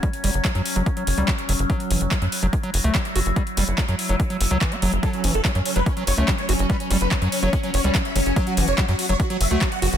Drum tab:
HH |xxoxxxoxxxoxxxox|xxoxxxoxxxoxxxox|xxoxxxoxxxoxxxox|xxoxxxoxxxoxxxox|
CP |----x-------x---|----x-------x---|----x-------x---|----x-------x---|
BD |o---o---o---o---|o---o---o---o---|o---o---o---o---|o---o---o---o---|

HH |xxoxxxoxxxoxxxox|xxoxxxoxxxoxxxox|
CP |----x-------x---|----x-------x---|
BD |o---o---o---o---|o---o---o---o---|